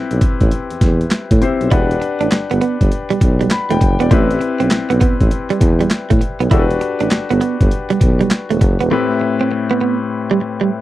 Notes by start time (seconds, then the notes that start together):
Already playing: C4 E4 G4 B4
0.11 B1, closed hi-hat
0.21 kick, closed hi-hat
0.40 A1, kick, closed hi-hat
0.51 closed hi-hat
0.70 E2, closed hi-hat
0.81 E2, kick, snare, closed hi-hat
1.01 closed hi-hat
1.11 snare, clap, closed hi-hat
1.31 A2, kick, closed hi-hat
1.41 C4 E4 G4 C5, closed hi-hat
1.61 B1, closed hi-hat
1.71 E1 D4 E4 G4 B4 F#5, kick, closed hi-hat
1.91 closed hi-hat
2.01 muted clean electric guitar stroke, closed hi-hat
2.21 A1 D4, closed hi-hat
2.31 G1, muted clean electric guitar stroke, snare, clap, closed hi-hat
2.51 G1 B3, closed hi-hat
2.61 B3, closed hi-hat
2.81 G1, kick, closed hi-hat
2.92 closed hi-hat
3.10 B1 G3, closed hi-hat
3.21 B1, muted clean electric guitar stroke, kick, closed hi-hat
3.41 G3, closed hi-hat
3.51 B5, snare, clap, closed hi-hat
3.71 E1 A3 G5, closed hi-hat
3.81 F#1, muted clean electric guitar stroke, kick, closed hi-hat
4.00 E1 B3 D5, closed hi-hat
4.11 A1 A3 C4 E4 G4 B4, kick, closed hi-hat
4.31 closed hi-hat
4.41 muted clean electric guitar stroke, closed hi-hat
4.60 B1 C4, closed hi-hat
4.71 B1, muted clean electric guitar stroke, snare, clap, closed hi-hat
4.90 B1 B3, closed hi-hat
5.01 B3, kick, closed hi-hat
5.21 A1, kick, closed hi-hat
5.31 closed hi-hat
5.50 G3, closed hi-hat
5.61 E2, muted clean electric guitar stroke, kick, closed hi-hat
5.81 G3, closed hi-hat
5.91 snare, clap, closed hi-hat
6.10 A2 A3, kick, closed hi-hat
6.21 muted clean electric guitar stroke, closed hi-hat
6.40 B1 B3, closed hi-hat
6.51 E1 D4 E4 F#4 G4 A4, kick, closed hi-hat
6.60 B4
6.71 closed hi-hat
6.81 muted clean electric guitar stroke, closed hi-hat
7.00 A1 D4, closed hi-hat
7.11 G1, muted clean electric guitar stroke, snare, clap, closed hi-hat
7.31 G1 B3, closed hi-hat
7.41 B3, closed hi-hat
7.61 G1, kick, closed hi-hat
7.71 closed hi-hat
7.90 B1 G3, closed hi-hat
8.01 B1, muted clean electric guitar stroke, kick, closed hi-hat
8.21 G3, closed hi-hat
8.31 snare, clap, closed hi-hat
8.50 E1 A3, closed hi-hat
8.61 F#1, muted clean electric guitar stroke, kick, closed hi-hat
8.80 E1 B3, closed hi-hat
8.91 A2 A3 C4 E4 G4 B4
9.21 muted clean electric guitar stroke
9.41 C4
9.52 muted clean electric guitar stroke
9.71 B3
9.81 B3
10.31 G3
10.41 muted clean electric guitar stroke
10.61 G3